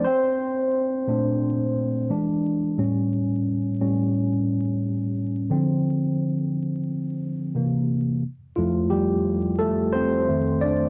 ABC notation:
X:1
M:4/4
L:1/8
Q:"Swing 16ths" 1/4=88
K:F
V:1 name="Tine electric piano"
[Cc]4 z4 | z8 | z8 | z [F,F] [G,G]2 [A,A] [Cc]2 [Dd] |]
V:2 name="Tine electric piano" clef=bass
z3 [B,,A,D] z2 [E,^G,D]2 | [A,,G,^C]3 [A,,G,C] z4 | [D,F,C]3 z3 [C,E,B,] z | z [F,,A,E]4- [F,,A,E] [F,,_E,A,]2 |]